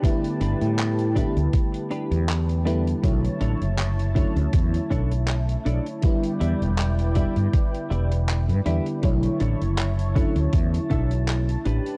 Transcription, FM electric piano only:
X:1
M:4/4
L:1/8
Q:"Swing 16ths" 1/4=80
K:Bm
V:1 name="FM electric piano"
[D,G,A,B,E]3 [D,G,A,B,E]4 [D,G,A,B,E] | [D,F,A,Ec]3 [D,F,A,CE] z4 | [D,G,B,E]3 [D,G,B,E]4 [D,G,B,E] | [D,F,A,Ec]3 [D,F,A,CE] z4 |]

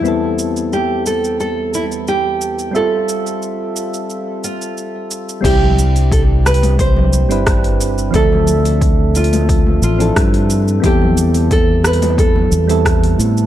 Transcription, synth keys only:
X:1
M:4/4
L:1/16
Q:1/4=89
K:C
V:1 name="Synth keys"
[E,,G,B,CEA]16 | [G,CFAe]16 | [G,CDEG]8- [G,CDEG]3 [G,CDEB] z4 | [F,CDAe]8- [F,CDAe]3 [F,CDEA] z4 |
[G,B,CEA]8- [G,B,CEA]3 [G,B,CEA] z4 |]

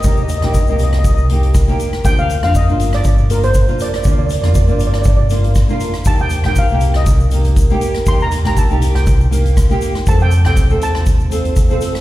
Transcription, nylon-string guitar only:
X:1
M:4/4
L:1/16
Q:"Swing 16ths" 1/4=120
K:Bb
V:1 name="Nylon-string guitar"
[B,EG]2 z [B,EG] z [B,EG]3 z2 [B,EG]2 z [B,EG]2 z | [B,DF]2 z [B,DF] z [B,DF]3 z2 [B,DF]2 z [B,DF]2 z | [B,DF]2 z [B,DF] z [B,DF]3 z2 [B,DF]2 z [B,DF]2 z | [B,EG]2 z [B,EG] z [B,EG]3 z2 [B,EG]2 z [B,EG]2 z |
[B,EG]2 z [B,EG] z [B,EG]3 z2 [B,EG]2 z [B,EG]2 z | [CFA]2 z [CFA] z [CFA]3 z2 [CFA]2 z [CFA]2 z |]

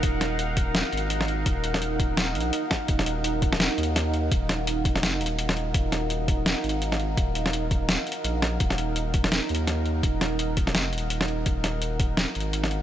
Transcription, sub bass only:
X:1
M:4/4
L:1/8
Q:"Swing 16ths" 1/4=168
K:Ebm
V:1 name="Sub bass" clef=bass
E,,,4 z A,,,3 | E,,,4- E,,, B,,, z2 | E,,,4 z E,,3 | E,,,4 F,,, E,,,3 |
E,,,4 z A,,,3 | E,,,4 z2 B,,,2 | E,,,4 z E,,3 | E,,,4 F,,, E,,,3 |
E,,,4 z A,,,3 |]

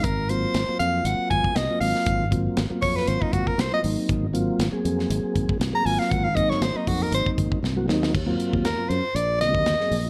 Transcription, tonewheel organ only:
X:1
M:4/4
L:1/16
Q:"Swing 16ths" 1/4=119
K:Abmix
V:1 name="Tonewheel organ"
z2 [G,B,CF]3 [G,B,CF]6- [G,B,CF] z [G,B,CF] [G,B,CF]2- | [G,B,CF] z [G,B,CF]3 [G,B,CF]6- [G,B,CF] z [G,B,CF] [G,B,CE]2- | [G,B,CE] z [G,B,CF]3 [G,B,CA]6- [G,B,CA] z [G,B,CA] [G,B,CF]2- | [G,B,CF] z [G,B,CE]3 [G,B,CE]6- [G,B,CE] z [G,B,CG] [G,B,CE]2 |
[K:Eb] z [_G,B,CF]3 z [G,B,CF]2 [CF] z2 [D,G,B,C]3 [G,B,CA]2 [CF] |]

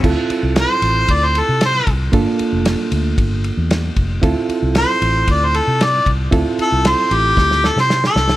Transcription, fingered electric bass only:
X:1
M:4/4
L:1/16
Q:1/4=114
K:Dm
V:1 name="Fingered electric bass" clef=bass
D,, z2 C,,2 z A,,,2 D,,3 C,3 C,,2 | G,,, z2 F,,,2 z D,,2 G,,,3 E,,3 F,,,2 | D,, z2 C,,2 z A,,,2 D,,3 C,3 C,,2 | D,, z2 C,,2 z A,,,2 D,,3 C,3 C,,2 |]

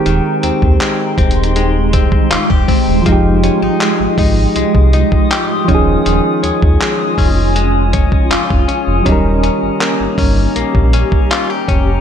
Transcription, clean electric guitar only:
X:1
M:4/4
L:1/16
Q:1/4=80
K:Ebmix
V:1 name="Clean electric guitar"
E,2 C2 A,2 C2 A,2 C2 F G C2 | F,2 D E A,2 E2 A,2 E2 G2 E,2 | E,2 D2 A,2 D2 A,2 D2 F2 D2 | E,2 D2 B,2 D2 B,2 D2 F G D2 |]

